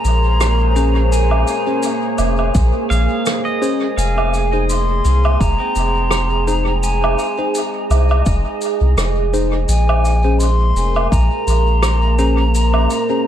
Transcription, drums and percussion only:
0.05 shaker soft
0.41 cross-stick medium
0.41 shaker medium
0.76 shaker soft
1.12 shaker medium
1.31 low woodblock medium
1.47 shaker medium
1.83 shaker medium
2.18 low woodblock medium
2.18 shaker medium
2.39 low woodblock medium
2.55 kick loud
2.55 shaker medium
2.91 shaker soft
3.26 cross-stick medium
3.26 shaker medium
3.62 shaker soft
3.98 shaker medium
4.18 low woodblock medium
4.34 shaker soft
4.69 shaker medium
5.05 shaker soft
5.25 low woodblock medium
5.41 kick loud
5.41 shaker medium
5.75 shaker medium
6.11 cross-stick medium
6.11 shaker medium
6.48 shaker soft
6.83 shaker medium
7.04 low woodblock medium
7.19 shaker soft
7.55 shaker medium
7.91 low woodblock medium
7.91 shaker soft
8.11 low woodblock medium
8.26 kick loud
8.26 shaker medium
8.61 shaker soft
8.98 cross-stick medium
8.98 shaker medium
9.34 shaker soft
9.69 shaker medium
9.89 low woodblock medium
10.05 shaker medium
10.40 shaker medium
10.76 shaker soft
10.96 low woodblock medium
11.12 kick loud
11.12 shaker medium
11.48 shaker soft
11.83 cross-stick loud
11.83 shaker medium
12.19 shaker soft
12.55 shaker medium
12.74 low woodblock medium
12.90 shaker medium

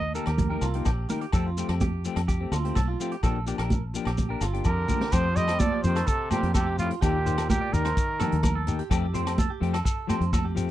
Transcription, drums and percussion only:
0.15 closed hi-hat soft
0.15 shekere medium
0.26 cross-stick medium
0.26 closed hi-hat soft
0.26 low agogo medium
0.38 kick medium
0.38 closed hi-hat soft
0.38 muted conga soft
0.38 high conga medium
0.38 low conga medium
0.38 shekere medium
0.61 cross-stick medium
0.61 closed hi-hat soft
0.61 low agogo medium
0.61 shekere medium
0.74 closed hi-hat soft
0.85 kick medium
0.85 cross-stick medium
0.85 closed hi-hat soft
0.85 low agogo medium
0.85 shekere loud
1.09 closed hi-hat medium
1.09 muted conga soft
1.09 high conga medium
1.09 shekere medium
1.21 closed hi-hat soft
1.32 kick medium
1.32 cross-stick medium
1.32 closed hi-hat soft
1.32 low agogo medium
1.32 shekere loud
1.57 closed hi-hat soft
1.57 muted conga soft
1.57 shekere medium
1.69 cross-stick medium
1.69 closed hi-hat medium
1.69 low agogo medium
1.81 kick medium
1.81 closed hi-hat medium
1.81 high conga medium
1.81 shekere medium
2.04 closed hi-hat soft
2.04 shekere medium
2.16 cross-stick medium
2.16 closed hi-hat medium
2.16 low agogo medium
2.29 kick medium
2.29 closed hi-hat soft
2.29 muted conga soft
2.29 shekere medium
2.52 cross-stick medium
2.52 closed hi-hat soft
2.52 high conga medium
2.52 low agogo medium
2.52 shekere medium
2.65 closed hi-hat soft
2.75 kick medium
2.75 cross-stick medium
2.75 closed hi-hat soft
2.75 high conga medium
2.75 low agogo medium
2.75 shekere loud
3.00 closed hi-hat soft
3.00 shekere medium
3.11 closed hi-hat soft
3.23 kick medium
3.23 cross-stick medium
3.23 closed hi-hat soft
3.23 low agogo medium
3.23 shekere loud
3.47 closed hi-hat soft
3.47 muted conga soft
3.47 shekere medium
3.58 cross-stick medium
3.58 closed hi-hat soft
3.58 low agogo medium
3.70 kick medium
3.70 closed hi-hat soft
3.70 high conga medium
3.70 shekere medium
3.95 closed hi-hat soft
3.95 shekere medium
4.05 cross-stick medium
4.05 closed hi-hat soft
4.05 low agogo medium
4.18 kick medium
4.18 closed hi-hat soft
4.18 muted conga soft
4.18 high conga medium
4.18 low conga medium
4.18 shekere medium
4.41 cross-stick medium
4.41 closed hi-hat soft
4.41 low agogo medium
4.41 shekere medium
4.54 closed hi-hat soft
4.65 kick medium
4.65 low agogo medium
4.65 shekere medium
4.89 kick medium
4.89 muted conga soft
4.89 high conga medium
4.89 low conga medium
4.89 shekere medium
5.01 snare medium
5.12 kick loud
5.12 cross-stick medium
5.12 closed hi-hat medium
5.12 muted conga soft
5.12 low agogo medium
5.12 shekere medium
5.36 closed hi-hat medium
5.36 muted conga soft
5.36 shekere medium
5.48 cross-stick medium
5.48 closed hi-hat medium
5.48 low agogo medium
5.48 shekere soft
5.60 kick medium
5.60 closed hi-hat soft
5.60 high conga loud
5.60 shekere medium
5.84 closed hi-hat soft
5.84 shekere loud
5.96 cross-stick medium
5.96 closed hi-hat medium
5.96 low agogo medium
5.96 shekere soft
6.07 kick medium
6.07 closed hi-hat soft
6.07 muted conga soft
6.07 shekere medium
6.31 cross-stick medium
6.31 closed hi-hat medium
6.31 high conga medium
6.31 low agogo medium
6.31 shekere medium
6.43 closed hi-hat medium
6.54 kick medium
6.54 cross-stick medium
6.54 closed hi-hat soft
6.54 high conga medium
6.54 low agogo medium
6.54 shekere medium
6.78 closed hi-hat soft
6.78 muted conga soft
6.78 shekere medium
6.91 closed hi-hat soft
7.02 kick medium
7.02 cross-stick medium
7.02 closed hi-hat soft
7.02 muted conga soft
7.02 low agogo medium
7.02 shekere medium
7.26 closed hi-hat soft
7.26 muted conga soft
7.26 shekere medium
7.38 cross-stick medium
7.38 closed hi-hat medium
7.38 low agogo medium
7.38 shekere soft
7.50 kick medium
7.50 closed hi-hat soft
7.50 high conga medium
7.50 shekere medium
7.73 closed hi-hat soft
7.73 shekere medium
7.85 cross-stick medium
7.85 closed hi-hat medium
7.85 low agogo medium
7.85 shekere soft
7.97 kick medium
7.97 closed hi-hat soft
7.97 muted conga soft
7.97 shekere medium
8.20 cross-stick medium
8.20 closed hi-hat soft
8.20 high conga medium
8.20 low conga medium
8.20 low agogo medium
8.20 shekere medium
8.32 closed hi-hat medium
8.43 kick medium
8.43 cross-stick medium
8.43 closed hi-hat medium
8.43 high conga medium
8.43 low conga medium
8.43 low agogo medium
8.43 shekere medium
8.67 closed hi-hat medium
8.67 muted conga soft
8.67 shekere medium
8.79 closed hi-hat medium
8.91 kick loud
8.91 cross-stick medium
8.91 closed hi-hat medium
8.91 muted conga soft
8.91 low agogo medium
8.91 shekere medium
9.15 closed hi-hat medium
9.15 muted conga soft
9.15 shekere medium
9.27 cross-stick medium
9.27 closed hi-hat medium
9.27 low agogo medium
9.27 shekere soft
9.38 kick medium
9.38 closed hi-hat medium
9.38 high conga medium
9.38 shekere medium
9.63 closed hi-hat medium
9.74 cross-stick medium
9.74 closed hi-hat medium
9.74 low agogo medium
9.74 shekere soft
9.86 kick medium
9.86 closed hi-hat soft
9.86 muted conga soft
9.86 shekere medium
10.09 cross-stick medium
10.09 closed hi-hat soft
10.09 high conga medium
10.09 low agogo medium
10.09 shekere loud
10.21 closed hi-hat soft
10.33 kick medium
10.33 cross-stick medium
10.33 closed hi-hat medium
10.33 high conga medium
10.33 low agogo medium
10.33 shekere medium
10.57 closed hi-hat medium
10.57 muted conga soft
10.57 shekere loud

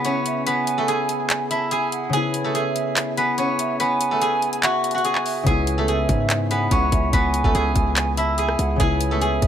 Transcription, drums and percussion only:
0.05 closed hi-hat medium
0.26 closed hi-hat medium
0.47 closed hi-hat medium
0.67 closed hi-hat medium
0.88 closed hi-hat medium
1.09 closed hi-hat medium
1.30 clap loud
1.30 closed hi-hat medium
1.51 closed hi-hat medium
1.71 closed hi-hat medium
1.92 closed hi-hat medium
2.13 closed hi-hat medium
2.34 closed hi-hat medium
2.55 closed hi-hat medium
2.76 closed hi-hat medium
2.97 clap loud
2.97 closed hi-hat medium
3.17 closed hi-hat medium
3.38 closed hi-hat medium
3.59 closed hi-hat medium
3.80 closed hi-hat medium
4.01 closed hi-hat medium
4.22 closed hi-hat medium
4.42 closed hi-hat soft
4.42 open hi-hat soft
4.53 closed hi-hat medium
4.63 clap loud
4.63 closed hi-hat medium
4.84 closed hi-hat medium
4.91 closed hi-hat medium
4.98 closed hi-hat soft
5.05 closed hi-hat medium
5.15 clap medium
5.26 open hi-hat medium
5.47 kick loud
5.47 closed hi-hat medium
5.67 closed hi-hat medium
5.88 closed hi-hat medium
6.09 kick medium
6.09 closed hi-hat medium
6.30 clap loud
6.30 closed hi-hat medium
6.51 closed hi-hat medium
6.71 kick medium
6.71 closed hi-hat medium
6.92 kick medium
6.92 closed hi-hat medium
7.13 kick loud
7.13 closed hi-hat medium
7.34 closed hi-hat medium
7.44 kick loud
7.55 closed hi-hat medium
7.76 kick medium
7.76 closed hi-hat medium
7.97 clap loud
7.97 closed hi-hat medium
8.17 closed hi-hat medium
8.38 closed hi-hat medium
8.49 cross-stick medium
8.59 closed hi-hat medium
8.80 kick loud
8.80 closed hi-hat medium
9.01 closed hi-hat medium
9.22 closed hi-hat medium
9.42 kick medium
9.42 closed hi-hat medium

